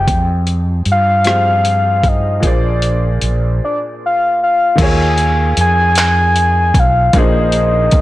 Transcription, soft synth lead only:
0, 0, Header, 1, 2, 480
1, 0, Start_track
1, 0, Tempo, 784314
1, 47, Time_signature, 6, 3, 24, 8
1, 4905, End_track
2, 0, Start_track
2, 0, Title_t, "Soft synth lead"
2, 0, Program_c, 0, 80
2, 0, Note_on_c, 0, 79, 94
2, 300, Note_off_c, 0, 79, 0
2, 560, Note_on_c, 0, 77, 114
2, 1275, Note_on_c, 0, 75, 94
2, 1284, Note_off_c, 0, 77, 0
2, 1508, Note_on_c, 0, 74, 86
2, 1517, Note_off_c, 0, 75, 0
2, 2218, Note_off_c, 0, 74, 0
2, 2230, Note_on_c, 0, 74, 83
2, 2316, Note_off_c, 0, 74, 0
2, 2484, Note_on_c, 0, 77, 96
2, 2690, Note_off_c, 0, 77, 0
2, 2713, Note_on_c, 0, 77, 99
2, 2924, Note_off_c, 0, 77, 0
2, 2949, Note_on_c, 0, 80, 116
2, 3394, Note_off_c, 0, 80, 0
2, 3432, Note_on_c, 0, 80, 127
2, 4157, Note_on_c, 0, 77, 107
2, 4166, Note_off_c, 0, 80, 0
2, 4393, Note_on_c, 0, 75, 115
2, 4403, Note_off_c, 0, 77, 0
2, 4905, Note_off_c, 0, 75, 0
2, 4905, End_track
0, 0, End_of_file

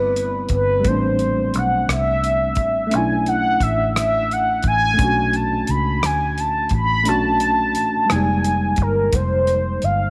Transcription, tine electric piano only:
0, 0, Header, 1, 2, 480
1, 0, Start_track
1, 0, Tempo, 689655
1, 592, Time_signature, 6, 3, 24, 8
1, 7030, End_track
2, 0, Start_track
2, 0, Title_t, "Tine electric piano"
2, 0, Program_c, 0, 4
2, 0, Control_c, 0, 64, 127
2, 0, Note_on_c, 0, 55, 57
2, 0, Note_on_c, 0, 59, 53
2, 0, Note_on_c, 0, 60, 47
2, 0, Note_on_c, 0, 64, 63
2, 546, Note_off_c, 0, 55, 0
2, 556, Note_on_c, 0, 55, 60
2, 558, Note_off_c, 0, 59, 0
2, 570, Note_off_c, 0, 60, 0
2, 580, Note_on_c, 0, 57, 54
2, 582, Note_off_c, 0, 64, 0
2, 605, Note_on_c, 0, 60, 47
2, 629, Note_on_c, 0, 62, 65
2, 1986, Note_off_c, 0, 55, 0
2, 1990, Note_off_c, 0, 57, 0
2, 1998, Note_on_c, 0, 57, 57
2, 2010, Note_off_c, 0, 60, 0
2, 2022, Note_on_c, 0, 61, 48
2, 2023, Note_off_c, 0, 62, 0
2, 2040, Control_c, 0, 64, 0
2, 2046, Note_on_c, 0, 62, 53
2, 2071, Note_on_c, 0, 64, 64
2, 2155, Control_c, 0, 64, 127
2, 3427, Note_off_c, 0, 57, 0
2, 3438, Note_on_c, 0, 57, 58
2, 3439, Note_off_c, 0, 61, 0
2, 3451, Note_off_c, 0, 62, 0
2, 3460, Note_on_c, 0, 61, 46
2, 3463, Note_off_c, 0, 64, 0
2, 3485, Note_on_c, 0, 62, 47
2, 3511, Note_on_c, 0, 66, 65
2, 4867, Note_off_c, 0, 57, 0
2, 4878, Note_off_c, 0, 61, 0
2, 4890, Note_off_c, 0, 62, 0
2, 4898, Note_on_c, 0, 57, 52
2, 4903, Note_off_c, 0, 66, 0
2, 4910, Note_on_c, 0, 61, 52
2, 4922, Note_on_c, 0, 62, 52
2, 4936, Note_on_c, 0, 66, 63
2, 5605, Note_on_c, 0, 55, 43
2, 5625, Note_off_c, 0, 57, 0
2, 5626, Note_on_c, 0, 58, 49
2, 5631, Note_off_c, 0, 61, 0
2, 5637, Note_off_c, 0, 62, 0
2, 5642, Control_c, 0, 64, 0
2, 5644, Note_off_c, 0, 66, 0
2, 5649, Note_on_c, 0, 56, 54
2, 5651, Note_on_c, 0, 63, 53
2, 5664, Note_off_c, 0, 55, 0
2, 5676, Note_on_c, 0, 55, 59
2, 5742, Control_c, 0, 64, 127
2, 7030, Note_off_c, 0, 55, 0
2, 7030, Note_off_c, 0, 56, 0
2, 7030, Note_off_c, 0, 58, 0
2, 7030, Note_off_c, 0, 63, 0
2, 7030, End_track
0, 0, End_of_file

